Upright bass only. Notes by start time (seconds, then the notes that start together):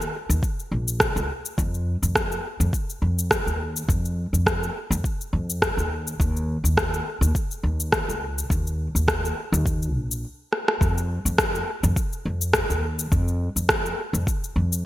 0.29 D#2
0.71 A#1
1.16 C#2
1.58 F2
2.02 F2
2.60 F2
3.02 F2
3.46 D#2
3.89 F2
4.33 F2
4.90 F2
5.33 F2
5.77 D#2
6.20 D#2
6.64 D#2
7.21 D#2
7.63 D#2
8.08 C#2
8.50 D#2
8.95 D#2
9.52 D#2
9.94 A#1
10.81 F2
11.25 F2
11.83 F2
12.25 F2
12.70 D#2
13.12 F2
13.56 F2
14.13 F2
14.56 F2